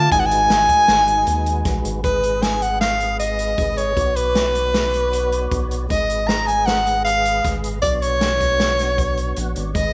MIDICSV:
0, 0, Header, 1, 6, 480
1, 0, Start_track
1, 0, Tempo, 385356
1, 148, Time_signature, 5, 2, 24, 8
1, 12369, End_track
2, 0, Start_track
2, 0, Title_t, "Soprano saxophone"
2, 0, Program_c, 0, 64
2, 0, Note_on_c, 0, 81, 96
2, 140, Note_off_c, 0, 81, 0
2, 147, Note_on_c, 0, 80, 98
2, 240, Note_on_c, 0, 78, 84
2, 259, Note_off_c, 0, 80, 0
2, 320, Note_on_c, 0, 80, 113
2, 338, Note_off_c, 0, 78, 0
2, 2064, Note_off_c, 0, 80, 0
2, 2542, Note_on_c, 0, 71, 81
2, 3021, Note_on_c, 0, 80, 76
2, 3040, Note_off_c, 0, 71, 0
2, 3266, Note_on_c, 0, 78, 81
2, 3285, Note_off_c, 0, 80, 0
2, 3490, Note_off_c, 0, 78, 0
2, 3498, Note_on_c, 0, 77, 88
2, 3949, Note_off_c, 0, 77, 0
2, 3981, Note_on_c, 0, 75, 87
2, 4697, Note_on_c, 0, 73, 83
2, 4716, Note_off_c, 0, 75, 0
2, 5183, Note_on_c, 0, 71, 90
2, 5202, Note_off_c, 0, 73, 0
2, 7110, Note_off_c, 0, 71, 0
2, 7342, Note_on_c, 0, 75, 98
2, 7814, Note_on_c, 0, 82, 88
2, 7833, Note_off_c, 0, 75, 0
2, 8060, Note_on_c, 0, 80, 90
2, 8079, Note_off_c, 0, 82, 0
2, 8293, Note_on_c, 0, 78, 93
2, 8312, Note_off_c, 0, 80, 0
2, 8769, Note_off_c, 0, 78, 0
2, 8777, Note_on_c, 0, 77, 92
2, 9363, Note_off_c, 0, 77, 0
2, 9743, Note_on_c, 0, 74, 94
2, 9916, Note_off_c, 0, 74, 0
2, 9916, Note_on_c, 0, 74, 62
2, 9982, Note_on_c, 0, 73, 94
2, 10001, Note_off_c, 0, 74, 0
2, 11905, Note_off_c, 0, 73, 0
2, 12139, Note_on_c, 0, 75, 90
2, 12369, Note_off_c, 0, 75, 0
2, 12369, End_track
3, 0, Start_track
3, 0, Title_t, "Tonewheel organ"
3, 0, Program_c, 1, 16
3, 120, Note_on_c, 1, 56, 59
3, 133, Note_on_c, 1, 63, 57
3, 147, Note_on_c, 1, 66, 53
3, 164, Note_on_c, 1, 71, 63
3, 2483, Note_off_c, 1, 56, 0
3, 2490, Note_off_c, 1, 63, 0
3, 2498, Note_off_c, 1, 66, 0
3, 2506, Note_off_c, 1, 71, 0
3, 2518, Note_on_c, 1, 56, 54
3, 2534, Note_on_c, 1, 68, 51
3, 2547, Note_on_c, 1, 71, 48
3, 2562, Note_on_c, 1, 75, 57
3, 4887, Note_off_c, 1, 56, 0
3, 4896, Note_off_c, 1, 68, 0
3, 4902, Note_off_c, 1, 71, 0
3, 4910, Note_off_c, 1, 75, 0
3, 4926, Note_on_c, 1, 59, 55
3, 4940, Note_on_c, 1, 66, 52
3, 4954, Note_on_c, 1, 73, 50
3, 4967, Note_on_c, 1, 74, 62
3, 7294, Note_off_c, 1, 59, 0
3, 7301, Note_off_c, 1, 66, 0
3, 7308, Note_off_c, 1, 73, 0
3, 7315, Note_off_c, 1, 74, 0
3, 7330, Note_on_c, 1, 56, 57
3, 7346, Note_on_c, 1, 68, 51
3, 7362, Note_on_c, 1, 71, 52
3, 7374, Note_on_c, 1, 75, 60
3, 9695, Note_off_c, 1, 56, 0
3, 9703, Note_off_c, 1, 68, 0
3, 9711, Note_off_c, 1, 71, 0
3, 9717, Note_off_c, 1, 75, 0
3, 9732, Note_on_c, 1, 59, 53
3, 9744, Note_on_c, 1, 66, 49
3, 9761, Note_on_c, 1, 73, 49
3, 9771, Note_on_c, 1, 62, 61
3, 11669, Note_on_c, 1, 78, 60
3, 11893, Note_off_c, 1, 78, 0
3, 11907, Note_on_c, 1, 74, 59
3, 12092, Note_off_c, 1, 59, 0
3, 12098, Note_off_c, 1, 66, 0
3, 12106, Note_off_c, 1, 73, 0
3, 12112, Note_off_c, 1, 62, 0
3, 12124, Note_on_c, 1, 56, 56
3, 12132, Note_off_c, 1, 74, 0
3, 12141, Note_on_c, 1, 68, 52
3, 12155, Note_on_c, 1, 71, 50
3, 12172, Note_on_c, 1, 75, 60
3, 12369, Note_off_c, 1, 56, 0
3, 12369, Note_off_c, 1, 68, 0
3, 12369, Note_off_c, 1, 71, 0
3, 12369, Note_off_c, 1, 75, 0
3, 12369, End_track
4, 0, Start_track
4, 0, Title_t, "Alto saxophone"
4, 0, Program_c, 2, 65
4, 0, Note_on_c, 2, 65, 80
4, 136, Note_off_c, 2, 65, 0
4, 143, Note_on_c, 2, 63, 80
4, 237, Note_off_c, 2, 63, 0
4, 237, Note_on_c, 2, 63, 67
4, 323, Note_off_c, 2, 63, 0
4, 323, Note_on_c, 2, 63, 80
4, 2065, Note_off_c, 2, 63, 0
4, 12369, End_track
5, 0, Start_track
5, 0, Title_t, "Analog synth bass"
5, 0, Program_c, 3, 38
5, 145, Note_on_c, 3, 32, 103
5, 591, Note_off_c, 3, 32, 0
5, 623, Note_on_c, 3, 32, 93
5, 847, Note_off_c, 3, 32, 0
5, 1099, Note_on_c, 3, 32, 88
5, 1548, Note_off_c, 3, 32, 0
5, 1584, Note_on_c, 3, 39, 92
5, 2030, Note_off_c, 3, 39, 0
5, 2058, Note_on_c, 3, 34, 80
5, 2278, Note_off_c, 3, 34, 0
5, 2305, Note_on_c, 3, 32, 84
5, 2521, Note_off_c, 3, 32, 0
5, 2543, Note_on_c, 3, 32, 106
5, 4417, Note_off_c, 3, 32, 0
5, 4461, Note_on_c, 3, 32, 82
5, 4911, Note_off_c, 3, 32, 0
5, 4942, Note_on_c, 3, 35, 98
5, 6820, Note_off_c, 3, 35, 0
5, 6869, Note_on_c, 3, 35, 87
5, 7317, Note_off_c, 3, 35, 0
5, 7355, Note_on_c, 3, 32, 99
5, 9226, Note_off_c, 3, 32, 0
5, 9276, Note_on_c, 3, 32, 81
5, 9721, Note_off_c, 3, 32, 0
5, 9754, Note_on_c, 3, 35, 91
5, 11622, Note_off_c, 3, 35, 0
5, 11676, Note_on_c, 3, 34, 79
5, 11890, Note_off_c, 3, 34, 0
5, 11920, Note_on_c, 3, 32, 83
5, 12132, Note_off_c, 3, 32, 0
5, 12144, Note_on_c, 3, 32, 103
5, 12369, Note_off_c, 3, 32, 0
5, 12369, End_track
6, 0, Start_track
6, 0, Title_t, "Drums"
6, 142, Note_on_c, 9, 42, 77
6, 144, Note_on_c, 9, 36, 103
6, 266, Note_off_c, 9, 42, 0
6, 268, Note_off_c, 9, 36, 0
6, 388, Note_on_c, 9, 42, 58
6, 513, Note_off_c, 9, 42, 0
6, 623, Note_on_c, 9, 38, 117
6, 623, Note_on_c, 9, 42, 86
6, 748, Note_off_c, 9, 38, 0
6, 748, Note_off_c, 9, 42, 0
6, 860, Note_on_c, 9, 42, 66
6, 861, Note_on_c, 9, 36, 76
6, 985, Note_off_c, 9, 42, 0
6, 986, Note_off_c, 9, 36, 0
6, 1097, Note_on_c, 9, 38, 109
6, 1097, Note_on_c, 9, 42, 82
6, 1222, Note_off_c, 9, 38, 0
6, 1222, Note_off_c, 9, 42, 0
6, 1340, Note_on_c, 9, 42, 59
6, 1465, Note_off_c, 9, 42, 0
6, 1578, Note_on_c, 9, 42, 83
6, 1702, Note_off_c, 9, 42, 0
6, 1820, Note_on_c, 9, 42, 60
6, 1945, Note_off_c, 9, 42, 0
6, 2055, Note_on_c, 9, 38, 35
6, 2055, Note_on_c, 9, 42, 85
6, 2059, Note_on_c, 9, 36, 100
6, 2180, Note_off_c, 9, 38, 0
6, 2180, Note_off_c, 9, 42, 0
6, 2184, Note_off_c, 9, 36, 0
6, 2302, Note_on_c, 9, 42, 60
6, 2427, Note_off_c, 9, 42, 0
6, 2541, Note_on_c, 9, 36, 98
6, 2541, Note_on_c, 9, 42, 65
6, 2665, Note_off_c, 9, 36, 0
6, 2666, Note_off_c, 9, 42, 0
6, 2782, Note_on_c, 9, 42, 52
6, 2906, Note_off_c, 9, 42, 0
6, 3020, Note_on_c, 9, 38, 103
6, 3020, Note_on_c, 9, 42, 72
6, 3145, Note_off_c, 9, 38, 0
6, 3145, Note_off_c, 9, 42, 0
6, 3261, Note_on_c, 9, 42, 52
6, 3386, Note_off_c, 9, 42, 0
6, 3499, Note_on_c, 9, 38, 94
6, 3499, Note_on_c, 9, 42, 72
6, 3624, Note_off_c, 9, 38, 0
6, 3624, Note_off_c, 9, 42, 0
6, 3739, Note_on_c, 9, 42, 49
6, 3863, Note_off_c, 9, 42, 0
6, 3979, Note_on_c, 9, 42, 76
6, 4104, Note_off_c, 9, 42, 0
6, 4219, Note_on_c, 9, 42, 52
6, 4344, Note_off_c, 9, 42, 0
6, 4459, Note_on_c, 9, 42, 73
6, 4460, Note_on_c, 9, 36, 96
6, 4583, Note_off_c, 9, 42, 0
6, 4585, Note_off_c, 9, 36, 0
6, 4704, Note_on_c, 9, 42, 58
6, 4829, Note_off_c, 9, 42, 0
6, 4942, Note_on_c, 9, 36, 95
6, 4943, Note_on_c, 9, 42, 74
6, 5066, Note_off_c, 9, 36, 0
6, 5067, Note_off_c, 9, 42, 0
6, 5184, Note_on_c, 9, 42, 55
6, 5309, Note_off_c, 9, 42, 0
6, 5422, Note_on_c, 9, 38, 100
6, 5422, Note_on_c, 9, 42, 81
6, 5547, Note_off_c, 9, 38, 0
6, 5547, Note_off_c, 9, 42, 0
6, 5667, Note_on_c, 9, 42, 57
6, 5791, Note_off_c, 9, 42, 0
6, 5907, Note_on_c, 9, 38, 104
6, 5907, Note_on_c, 9, 42, 73
6, 6031, Note_off_c, 9, 38, 0
6, 6031, Note_off_c, 9, 42, 0
6, 6150, Note_on_c, 9, 42, 53
6, 6274, Note_off_c, 9, 42, 0
6, 6390, Note_on_c, 9, 42, 71
6, 6514, Note_off_c, 9, 42, 0
6, 6629, Note_on_c, 9, 42, 52
6, 6754, Note_off_c, 9, 42, 0
6, 6868, Note_on_c, 9, 42, 75
6, 6869, Note_on_c, 9, 36, 98
6, 6992, Note_off_c, 9, 42, 0
6, 6994, Note_off_c, 9, 36, 0
6, 7112, Note_on_c, 9, 42, 53
6, 7237, Note_off_c, 9, 42, 0
6, 7352, Note_on_c, 9, 36, 95
6, 7352, Note_on_c, 9, 42, 67
6, 7476, Note_off_c, 9, 42, 0
6, 7477, Note_off_c, 9, 36, 0
6, 7594, Note_on_c, 9, 42, 50
6, 7718, Note_off_c, 9, 42, 0
6, 7831, Note_on_c, 9, 38, 102
6, 7831, Note_on_c, 9, 42, 71
6, 7956, Note_off_c, 9, 38, 0
6, 7956, Note_off_c, 9, 42, 0
6, 8074, Note_on_c, 9, 42, 55
6, 8198, Note_off_c, 9, 42, 0
6, 8312, Note_on_c, 9, 38, 102
6, 8312, Note_on_c, 9, 42, 75
6, 8437, Note_off_c, 9, 38, 0
6, 8437, Note_off_c, 9, 42, 0
6, 8553, Note_on_c, 9, 42, 59
6, 8677, Note_off_c, 9, 42, 0
6, 8794, Note_on_c, 9, 42, 74
6, 8919, Note_off_c, 9, 42, 0
6, 9035, Note_on_c, 9, 42, 53
6, 9159, Note_off_c, 9, 42, 0
6, 9273, Note_on_c, 9, 36, 96
6, 9273, Note_on_c, 9, 38, 31
6, 9273, Note_on_c, 9, 42, 76
6, 9398, Note_off_c, 9, 36, 0
6, 9398, Note_off_c, 9, 38, 0
6, 9398, Note_off_c, 9, 42, 0
6, 9513, Note_on_c, 9, 42, 62
6, 9637, Note_off_c, 9, 42, 0
6, 9752, Note_on_c, 9, 36, 97
6, 9752, Note_on_c, 9, 42, 78
6, 9876, Note_off_c, 9, 36, 0
6, 9876, Note_off_c, 9, 42, 0
6, 9992, Note_on_c, 9, 42, 57
6, 10116, Note_off_c, 9, 42, 0
6, 10226, Note_on_c, 9, 38, 105
6, 10226, Note_on_c, 9, 42, 80
6, 10351, Note_off_c, 9, 38, 0
6, 10351, Note_off_c, 9, 42, 0
6, 10470, Note_on_c, 9, 36, 67
6, 10470, Note_on_c, 9, 38, 31
6, 10470, Note_on_c, 9, 42, 59
6, 10594, Note_off_c, 9, 36, 0
6, 10594, Note_off_c, 9, 38, 0
6, 10594, Note_off_c, 9, 42, 0
6, 10708, Note_on_c, 9, 38, 106
6, 10708, Note_on_c, 9, 42, 76
6, 10833, Note_off_c, 9, 38, 0
6, 10833, Note_off_c, 9, 42, 0
6, 10949, Note_on_c, 9, 38, 31
6, 10949, Note_on_c, 9, 42, 53
6, 11074, Note_off_c, 9, 38, 0
6, 11074, Note_off_c, 9, 42, 0
6, 11189, Note_on_c, 9, 36, 91
6, 11189, Note_on_c, 9, 42, 70
6, 11313, Note_off_c, 9, 36, 0
6, 11313, Note_off_c, 9, 42, 0
6, 11427, Note_on_c, 9, 42, 48
6, 11552, Note_off_c, 9, 42, 0
6, 11663, Note_on_c, 9, 42, 72
6, 11788, Note_off_c, 9, 42, 0
6, 11904, Note_on_c, 9, 42, 54
6, 12028, Note_off_c, 9, 42, 0
6, 12143, Note_on_c, 9, 42, 71
6, 12145, Note_on_c, 9, 36, 94
6, 12268, Note_off_c, 9, 42, 0
6, 12269, Note_off_c, 9, 36, 0
6, 12369, End_track
0, 0, End_of_file